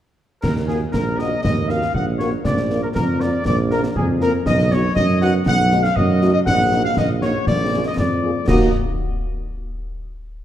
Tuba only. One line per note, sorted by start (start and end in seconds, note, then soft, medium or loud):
0.43 0.85 D#2 medium
0.94 1.36 A#1 medium
1.44 1.86 D#2 medium
1.94 2.36 A#1 medium
2.45 2.87 A#1 medium
2.95 3.37 F2 medium
3.46 3.87 A#1 medium
3.96 4.38 F2 medium
4.46 4.87 B1 medium
4.96 5.38 F#2 medium
5.46 5.88 B1 medium
5.97 6.38 F#2 medium
6.47 6.89 A#1 medium
6.97 7.39 A#1 medium
7.47 7.85 A#1 medium
7.98 8.39 F2 medium
8.48 8.69 D#2 medium